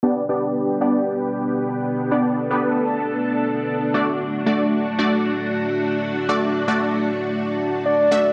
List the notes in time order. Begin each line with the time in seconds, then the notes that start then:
0.03 B3 D4 G4 D5
0.29 B3 D4 G4 D5
0.81 B3 D4 G4 D5
2.11 B3 D4 G4 A4 D5
2.51 B3 D4 G4 B4
3.94 A3 D4 F#4 D5
4.46 A3 D4 F#4 D5
4.99 A3 D4 F#4 D5
6.29 A3 D4 F#4 D5
6.68 A3 D4 F#4 D5
7.86 D5
8.11 A3 D4 F#4 E5